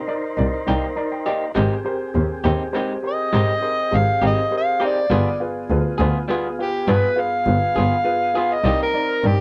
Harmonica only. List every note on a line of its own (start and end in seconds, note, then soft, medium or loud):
3.08 3.98 D#5 loud
3.97 4.23 F5 medium
4.27 4.53 D#5 medium
4.57 4.83 F5 loud
4.85 5.41 D5 medium
6.62 6.93 G4 medium
6.91 7.22 B4 medium
7.20 8.55 F5 medium
8.53 8.81 D#5 medium
8.83 9.28 A#4 loud
9.27 9.41 G4 medium